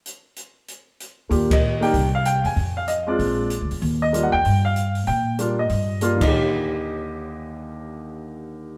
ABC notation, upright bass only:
X:1
M:4/4
L:1/8
Q:"Swing" 1/4=192
K:Eb
V:1 name="Upright bass" clef=bass
z8 | E,,4 C,,3 =E,, | F,,4 B,,,2- (3B,,, D,, _F,, | E,,3 _F,, G,,4 |
B,,4 G,,3 E,,- | E,,8- | E,,8 |]